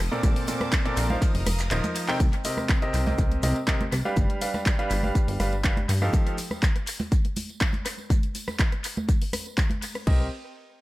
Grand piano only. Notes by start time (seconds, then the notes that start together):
0.12 A#2 C4 A4 A#4 D5
0.48 A#2 C4 A4 A#4 D5
0.85 A#2 C4 A4 A#4 D5
1.10 F3 D#4 A#4 C5 F5
1.71 F3 D#4 A#4 C5 D#5
2.08 C3 D#4 A#4 C5 G5
2.45 C3 C4 G4 A#4 D#5
2.82 C3 C4 G4 A#4 D#5
3.07 C3 C4 G4 A#4 D#5
3.43 C3 C4 G4 A#4 D#5
3.68 C3 C4 G4 A#4 D#5
4.05 G3 D4 G4 B4 F5
4.42 G3 D4 G4 B4 F5
4.79 G3 D4 G4 B4 F5
5.04 G3 D4 G4 B4 F5
5.40 G3 D4 G4 B4 F5
5.64 G3 D4 G4 B4 F5
6.02 F3 D#4 G4 A4 F5
10.07 C4 G4 A#4 D#5